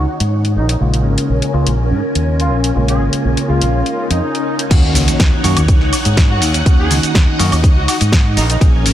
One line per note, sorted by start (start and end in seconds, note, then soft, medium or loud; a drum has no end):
0.00 0.53 D#4 medium
0.00 0.53 C#5 medium
0.00 0.53 F#5 medium
0.08 0.16 F#4 medium
0.08 shaker medium
0.20 0.58 G#2 medium
0.20 closed hi-hat medium
0.32 shaker soft
0.45 closed hi-hat soft
0.56 0.76 A#1 loud
0.56 4.67 C#4 medium
0.56 0.64 D#4 medium
0.56 4.67 A#4 medium
0.56 4.67 G#5 medium
0.56 shaker medium
0.69 0.77 D#4 medium
0.69 closed hi-hat medium
0.80 1.05 A#1 medium
0.80 1.51 C#3 medium
0.80 1.51 G#3 medium
0.80 1.51 A#3 medium
0.80 1.52 F4 medium
0.94 closed hi-hat medium
1.05 1.15 G#1 medium
1.05 shaker medium
1.18 closed hi-hat medium
1.29 1.39 A#1 medium
1.29 shaker soft
1.42 closed hi-hat medium
1.53 1.64 C#2 medium
1.53 1.70 C#3 medium
1.53 1.70 G#3 medium
1.53 1.70 A#3 medium
1.53 1.70 F4 loud
1.53 shaker medium
1.66 1.93 A#1 medium
1.66 closed hi-hat medium
1.91 2.00 G#2 medium
2.02 shaker medium
2.15 2.51 D#2 medium
2.15 closed hi-hat medium
2.40 2.55 F4 medium
2.40 closed hi-hat soft
2.51 2.71 A#1 loud
2.51 shaker medium
2.64 closed hi-hat medium
2.75 3.00 A#1 loud
2.75 3.46 C#3 medium
2.75 3.46 G#3 medium
2.75 3.46 A#3 medium
2.75 3.46 F4 medium
2.88 3.03 G#4 medium
2.88 closed hi-hat medium
3.00 3.10 G#1 medium
3.00 shaker loud
3.13 closed hi-hat medium
3.25 3.35 A#1 loud
3.25 shaker soft
3.37 closed hi-hat medium
3.48 3.59 C#2 medium
3.48 3.65 C#3 medium
3.48 3.65 G#3 medium
3.48 3.65 A#3 medium
3.48 3.65 F4 medium
3.48 4.08 F4 medium
3.48 shaker medium
3.61 3.81 A#1 medium
3.61 closed hi-hat medium
3.73 swell medium
3.86 closed hi-hat soft
3.98 shaker medium
4.10 4.20 F2 medium
4.10 4.59 D#4 medium
4.10 closed hi-hat medium
4.23 shaker soft
4.35 closed hi-hat soft
4.47 shaker medium
4.59 closed hi-hat medium
4.70 4.95 D#2 loud
4.70 5.41 D#3 medium
4.70 5.41 A#3 medium
4.70 5.41 C#4 medium
4.70 8.33 D#4 medium
4.70 5.42 F#4 medium
4.70 6.64 C#5 medium
4.70 8.33 F#5 medium
4.70 kick loud
4.70 closed hi-hat medium
4.70 crash loud
4.70 ride medium
4.70 impact medium
4.70 cabasa soft
4.95 5.05 C#2 medium
4.95 open hi-hat loud
4.95 ride medium
4.95 cabasa medium
5.08 closed hi-hat medium
5.08 cabasa soft
5.19 5.30 D#2 loud
5.19 kick loud
5.19 snare loud
5.19 closed hi-hat medium
5.19 ride medium
5.19 cabasa soft
5.43 5.54 F#2 medium
5.43 5.60 D#3 medium
5.43 5.60 A#3 medium
5.43 5.60 C#4 medium
5.43 5.61 F#4 loud
5.43 open hi-hat loud
5.43 ride medium
5.43 cabasa medium
5.57 5.81 D#2 medium
5.57 closed hi-hat medium
5.57 cabasa soft
5.57 high woodblock medium
5.68 kick loud
5.68 closed hi-hat medium
5.68 ride medium
5.68 cabasa soft
5.81 5.90 C#2 medium
5.81 snare soft
5.93 open hi-hat loud
5.93 ride medium
5.93 cabasa medium
5.93 high woodblock medium
6.05 6.42 G#2 medium
6.05 closed hi-hat medium
6.05 cabasa soft
6.17 kick loud
6.17 snare loud
6.17 closed hi-hat medium
6.17 ride medium
6.17 cabasa soft
6.30 6.45 F#4 medium
6.42 6.61 D#2 loud
6.42 open hi-hat loud
6.42 ride medium
6.42 cabasa medium
6.54 closed hi-hat medium
6.54 cabasa soft
6.65 6.91 D#2 loud
6.65 7.36 D#3 medium
6.65 7.36 A#3 medium
6.65 7.36 C#4 medium
6.65 7.37 F#4 loud
6.65 8.35 D#5 medium
6.65 kick loud
6.65 closed hi-hat medium
6.65 ride medium
6.65 cabasa soft
6.79 6.93 G#4 loud
6.91 7.01 C#2 medium
6.91 open hi-hat loud
6.91 ride medium
6.91 cabasa medium
7.03 closed hi-hat medium
7.03 cabasa soft
7.15 7.25 D#2 loud
7.15 kick loud
7.15 snare loud
7.15 closed hi-hat medium
7.15 ride medium
7.15 cabasa soft
7.39 7.49 F#2 medium
7.39 7.55 D#3 medium
7.39 7.56 A#3 medium
7.39 7.56 C#4 medium
7.39 7.56 F#4 loud
7.39 open hi-hat loud
7.39 ride medium
7.39 cabasa medium
7.52 7.77 D#2 medium
7.52 open hi-hat medium
7.52 cabasa soft
7.52 high woodblock medium
7.64 kick loud
7.64 closed hi-hat medium
7.64 ride medium
7.64 cabasa soft
7.76 7.86 C#2 medium
7.76 7.84 F#4 medium
7.88 7.96 F#4 medium
7.88 open hi-hat loud
7.88 ride medium
7.88 cabasa medium
7.88 high woodblock medium
8.01 8.38 G#2 medium
8.01 closed hi-hat medium
8.01 cabasa soft
8.12 kick loud
8.12 snare loud
8.12 closed hi-hat medium
8.12 ride medium
8.12 cabasa soft
8.36 8.56 A#1 loud
8.36 8.93 C#4 medium
8.36 8.45 D#4 medium
8.36 8.93 A#4 medium
8.36 8.93 G#5 medium
8.36 open hi-hat loud
8.36 ride medium
8.36 cabasa medium
8.49 8.57 D#4 medium
8.49 closed hi-hat medium
8.49 cabasa soft
8.60 8.86 A#1 loud
8.60 8.93 F3 medium
8.60 8.93 A#3 medium
8.60 8.93 C#4 medium
8.60 8.93 G#4 loud
8.60 kick loud
8.60 closed hi-hat medium
8.60 ride medium
8.60 cabasa soft
8.86 8.93 G#1 medium
8.86 open hi-hat loud
8.86 ride medium
8.86 cabasa medium